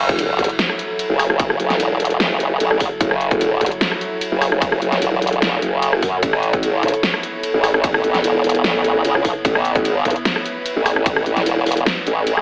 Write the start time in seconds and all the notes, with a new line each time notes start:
Already playing: F#1 F#3 E4 A4 C#5
0.09 kick, closed hi-hat
0.19 closed hi-hat, ride
0.39 G#1, kick, closed hi-hat
0.44 closed hi-hat
0.49 closed hi-hat
0.59 snare, closed hi-hat, ride
0.69 cross-stick
0.79 closed hi-hat
0.99 closed hi-hat, ride
1.10 F#1
1.19 cross-stick, open hi-hat
1.30 F#1, cross-stick
1.39 kick, closed hi-hat, ride
1.50 cross-stick
1.60 F#1, closed hi-hat
1.70 snare, closed hi-hat
1.80 E1, closed hi-hat, ride
2.00 closed hi-hat
2.05 closed hi-hat
2.10 closed hi-hat
2.20 F#1, snare, closed hi-hat, ride
2.40 closed hi-hat
2.60 A1, closed hi-hat, ride
2.71 cross-stick
2.80 G#1, kick, open hi-hat
3.01 F#1, kick, closed hi-hat, ride
3.11 cross-stick
3.21 closed hi-hat
3.31 kick, closed hi-hat
3.41 closed hi-hat, ride
3.61 G#1, kick, closed hi-hat
3.66 closed hi-hat
3.71 closed hi-hat
3.81 snare, closed hi-hat, ride
3.92 cross-stick
4.01 closed hi-hat
4.21 closed hi-hat, ride
4.32 F#1
4.42 cross-stick, open hi-hat
4.52 F#1, cross-stick
4.62 kick, closed hi-hat, ride
4.72 cross-stick
4.82 F#1, closed hi-hat
4.92 snare, closed hi-hat
5.02 E1, closed hi-hat, ride
5.22 closed hi-hat
5.27 closed hi-hat
5.33 closed hi-hat
5.42 E1, snare, closed hi-hat, ride
5.62 F#1, closed hi-hat
5.82 closed hi-hat, ride
5.93 cross-stick
6.02 F#2, kick, open hi-hat
6.23 A1 B3 E4 A4, kick, closed hi-hat, ride
6.33 cross-stick
6.43 closed hi-hat
6.53 kick, closed hi-hat
6.63 G#1, closed hi-hat, ride
6.83 B1, kick, closed hi-hat
6.88 closed hi-hat
6.94 closed hi-hat
7.03 snare, closed hi-hat, ride
7.14 cross-stick
7.23 closed hi-hat
7.43 closed hi-hat, ride
7.54 A1
7.64 cross-stick, open hi-hat
7.74 A1, cross-stick
7.84 kick, closed hi-hat, ride
7.94 cross-stick
8.04 A1, closed hi-hat
8.14 snare, closed hi-hat
8.24 E1, closed hi-hat, ride
8.44 closed hi-hat
8.49 closed hi-hat
8.55 closed hi-hat
8.64 A1, snare, closed hi-hat, ride
8.84 closed hi-hat
9.05 C#2, closed hi-hat, ride
9.15 cross-stick
9.25 B1, kick, open hi-hat
9.45 A1 B4, kick, closed hi-hat, ride
9.55 cross-stick
9.65 closed hi-hat
9.75 kick, closed hi-hat
9.85 G#1, closed hi-hat, ride
10.05 B1, kick, closed hi-hat
10.10 closed hi-hat
10.16 closed hi-hat
10.25 snare, closed hi-hat, ride
10.36 cross-stick
10.46 closed hi-hat
10.66 closed hi-hat, ride
10.76 A1
10.86 cross-stick, open hi-hat
10.96 A1, cross-stick
11.06 kick, closed hi-hat, ride
11.16 cross-stick
11.26 A1, closed hi-hat
11.37 snare, closed hi-hat
11.46 E1, closed hi-hat, ride
11.66 open hi-hat
11.72 closed hi-hat
11.77 closed hi-hat
11.86 snare, closed hi-hat, ride
12.07 A1, closed hi-hat
12.27 closed hi-hat, ride
12.37 cross-stick